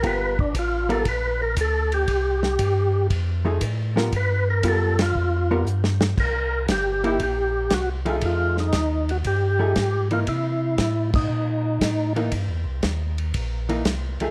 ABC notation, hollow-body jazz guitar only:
X:1
M:4/4
L:1/8
Q:"Swing" 1/4=117
K:Gdor
V:1 name="Hollow-body jazz guitar"
[G,=B,F^A] z2 [G,B,FA] z4 | z4 z [F,A,_E^G] z [=G,=B,F_B] | z2 [G,=B,F^A] z2 [G,B,FA] z2 | z3 [B,^DE] z3 [F,A,D_A]- |
[F,A,^D_A]2 z3 [F,=A,_E^G] z [=E,B,_E] | z6 z [E,B,^D] | z4 z [E,B,^D] z [F,A,D_A] |]